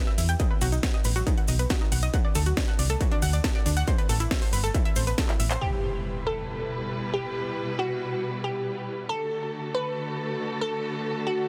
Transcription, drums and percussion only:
0.18 open hi-hat loud
0.18 cabasa medium
0.28 closed hi-hat soft
0.28 cabasa soft
0.39 kick loud
0.39 closed hi-hat medium
0.39 cabasa soft
0.61 open hi-hat loud
0.61 cabasa medium
0.72 closed hi-hat medium
0.72 cabasa soft
0.83 kick loud
0.83 snare loud
0.83 closed hi-hat medium
0.83 cabasa soft
1.04 open hi-hat loud
1.04 cabasa medium
1.16 closed hi-hat medium
1.16 cabasa medium
1.27 kick loud
1.27 closed hi-hat medium
1.27 cabasa soft
1.38 closed hi-hat soft
1.48 open hi-hat loud
1.48 cabasa medium
1.59 closed hi-hat medium
1.59 cabasa soft
1.70 kick loud
1.70 snare loud
1.70 closed hi-hat medium
1.70 cabasa soft
1.92 open hi-hat loud
1.92 cabasa medium
2.02 closed hi-hat soft
2.02 cabasa soft
2.14 kick loud
2.14 closed hi-hat medium
2.14 cabasa soft
2.35 open hi-hat loud
2.35 cabasa medium
2.46 closed hi-hat medium
2.46 cabasa soft
2.57 kick loud
2.57 snare loud
2.57 closed hi-hat medium
2.57 cabasa soft
2.79 open hi-hat loud
2.79 cabasa medium
2.89 closed hi-hat medium
2.89 cabasa medium
3.01 kick loud
3.01 closed hi-hat medium
3.01 cabasa soft
3.12 closed hi-hat soft
3.22 open hi-hat loud
3.22 cabasa medium
3.33 closed hi-hat medium
3.33 cabasa soft
3.44 kick loud
3.44 snare loud
3.44 closed hi-hat medium
3.44 cabasa soft
3.66 open hi-hat loud
3.66 cabasa medium
3.76 closed hi-hat medium
3.76 cabasa soft
3.87 kick loud
3.87 closed hi-hat medium
3.87 cabasa soft
3.98 closed hi-hat soft
4.09 open hi-hat loud
4.09 cabasa medium
4.20 closed hi-hat medium
4.20 cabasa soft
4.31 kick loud
4.31 snare loud
4.31 closed hi-hat medium
4.31 cabasa soft
4.42 open hi-hat medium
4.53 open hi-hat loud
4.53 cabasa medium
4.64 closed hi-hat medium
4.64 cabasa medium
4.74 kick loud
4.74 closed hi-hat medium
4.74 cabasa soft
4.85 closed hi-hat soft
4.96 open hi-hat loud
4.96 cabasa medium
5.07 closed hi-hat medium
5.07 cabasa soft
5.18 kick loud
5.18 snare loud
5.18 closed hi-hat medium
5.18 cabasa soft
5.29 clap medium
5.29 closed hi-hat soft
5.40 open hi-hat loud
5.40 cabasa medium
5.51 clap loud
5.51 closed hi-hat medium
5.51 cabasa medium
5.61 crash medium

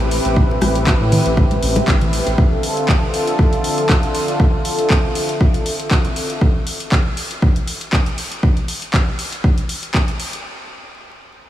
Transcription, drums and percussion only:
0.11 open hi-hat loud
0.25 closed hi-hat medium
0.36 kick loud
0.51 high bongo soft
0.61 cross-stick medium
0.61 open hi-hat loud
0.61 high conga medium
0.75 closed hi-hat medium
0.87 kick loud
0.87 clap loud
0.87 high bongo medium
1.12 open hi-hat loud
1.12 low conga medium
1.26 closed hi-hat medium
1.37 kick loud
1.37 high bongo soft
1.51 closed hi-hat soft
1.51 high conga medium
1.63 open hi-hat loud
1.76 closed hi-hat medium
1.76 high bongo medium
1.76 high conga medium
1.88 kick loud
1.88 clap loud
2.01 closed hi-hat soft
2.01 low conga medium
2.13 open hi-hat loud
2.27 closed hi-hat medium
2.27 high bongo soft
2.38 kick loud
2.63 open hi-hat loud
2.77 closed hi-hat medium
2.89 kick loud
2.89 clap loud
3.14 open hi-hat loud
3.27 closed hi-hat medium
3.39 kick loud
3.53 closed hi-hat soft
3.64 open hi-hat loud
3.78 closed hi-hat medium
3.89 kick loud
3.89 clap loud
4.03 closed hi-hat soft
4.15 open hi-hat loud
4.28 closed hi-hat medium
4.40 kick loud
4.65 open hi-hat loud
4.79 closed hi-hat medium
4.90 kick loud
4.90 clap loud
5.15 open hi-hat loud
5.29 closed hi-hat medium
5.41 kick loud
5.54 closed hi-hat medium
5.66 open hi-hat loud
5.79 closed hi-hat medium
5.91 kick loud
5.91 clap loud
6.05 closed hi-hat soft
6.16 open hi-hat loud
6.30 closed hi-hat medium
6.41 kick loud
6.67 open hi-hat loud
6.80 closed hi-hat medium
6.92 kick loud
6.92 clap loud
7.17 open hi-hat medium
7.31 closed hi-hat medium
7.42 kick loud
7.56 closed hi-hat medium
7.67 open hi-hat loud
7.81 closed hi-hat medium
7.93 kick loud
7.93 clap loud
8.06 closed hi-hat medium
8.18 open hi-hat loud
8.32 closed hi-hat medium
8.43 kick loud
8.57 closed hi-hat soft
8.68 open hi-hat loud
8.82 closed hi-hat medium
8.94 kick loud
8.94 clap loud
9.19 open hi-hat loud
9.32 closed hi-hat medium
9.44 kick loud
9.58 closed hi-hat medium
9.69 open hi-hat loud
9.83 closed hi-hat medium
9.94 kick loud
9.94 clap loud
10.08 closed hi-hat medium
10.20 open hi-hat loud
10.33 closed hi-hat medium

